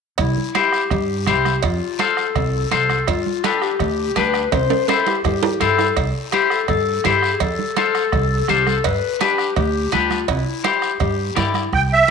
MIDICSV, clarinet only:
0, 0, Header, 1, 2, 480
1, 0, Start_track
1, 0, Key_signature, 0, "major"
1, 0, Tempo, 360577
1, 252, Time_signature, 4, 2, 24, 8
1, 16114, End_track
2, 0, Start_track
2, 0, Title_t, "Clarinet"
2, 0, Program_c, 0, 71
2, 258, Note_on_c, 0, 64, 79
2, 735, Note_on_c, 0, 67, 87
2, 755, Note_off_c, 0, 64, 0
2, 1207, Note_off_c, 0, 67, 0
2, 1215, Note_on_c, 0, 67, 91
2, 1662, Note_off_c, 0, 67, 0
2, 1689, Note_on_c, 0, 67, 94
2, 2181, Note_on_c, 0, 65, 85
2, 2201, Note_off_c, 0, 67, 0
2, 2667, Note_on_c, 0, 69, 100
2, 2686, Note_off_c, 0, 65, 0
2, 3600, Note_off_c, 0, 69, 0
2, 3608, Note_on_c, 0, 69, 96
2, 4095, Note_on_c, 0, 65, 91
2, 4115, Note_off_c, 0, 69, 0
2, 4575, Note_on_c, 0, 69, 96
2, 4595, Note_off_c, 0, 65, 0
2, 4811, Note_on_c, 0, 67, 101
2, 4831, Note_off_c, 0, 69, 0
2, 5535, Note_on_c, 0, 71, 102
2, 5555, Note_off_c, 0, 67, 0
2, 6011, Note_on_c, 0, 72, 99
2, 6031, Note_off_c, 0, 71, 0
2, 6492, Note_on_c, 0, 69, 90
2, 6512, Note_off_c, 0, 72, 0
2, 6740, Note_on_c, 0, 67, 85
2, 6760, Note_off_c, 0, 69, 0
2, 6969, Note_off_c, 0, 67, 0
2, 6977, Note_on_c, 0, 67, 97
2, 7426, Note_off_c, 0, 67, 0
2, 7463, Note_on_c, 0, 69, 105
2, 8022, Note_off_c, 0, 69, 0
2, 8414, Note_on_c, 0, 67, 94
2, 8652, Note_on_c, 0, 69, 85
2, 8672, Note_off_c, 0, 67, 0
2, 8889, Note_off_c, 0, 69, 0
2, 8897, Note_on_c, 0, 69, 101
2, 9383, Note_on_c, 0, 67, 94
2, 9403, Note_off_c, 0, 69, 0
2, 9765, Note_on_c, 0, 68, 72
2, 9785, Note_off_c, 0, 67, 0
2, 9860, Note_on_c, 0, 69, 95
2, 9880, Note_off_c, 0, 68, 0
2, 10333, Note_off_c, 0, 69, 0
2, 10340, Note_on_c, 0, 69, 104
2, 11294, Note_on_c, 0, 67, 91
2, 11314, Note_off_c, 0, 69, 0
2, 11534, Note_on_c, 0, 69, 96
2, 11554, Note_off_c, 0, 67, 0
2, 11781, Note_on_c, 0, 71, 98
2, 11801, Note_off_c, 0, 69, 0
2, 12258, Note_on_c, 0, 67, 93
2, 12278, Note_off_c, 0, 71, 0
2, 12717, Note_off_c, 0, 67, 0
2, 12725, Note_on_c, 0, 67, 94
2, 13211, Note_on_c, 0, 65, 83
2, 13231, Note_off_c, 0, 67, 0
2, 13689, Note_on_c, 0, 64, 76
2, 13709, Note_off_c, 0, 65, 0
2, 14175, Note_on_c, 0, 67, 83
2, 14195, Note_off_c, 0, 64, 0
2, 14634, Note_off_c, 0, 67, 0
2, 14642, Note_on_c, 0, 67, 91
2, 15124, Note_on_c, 0, 64, 83
2, 15144, Note_off_c, 0, 67, 0
2, 15350, Note_off_c, 0, 64, 0
2, 15358, Note_on_c, 0, 64, 71
2, 15587, Note_off_c, 0, 64, 0
2, 16114, End_track
0, 0, End_of_file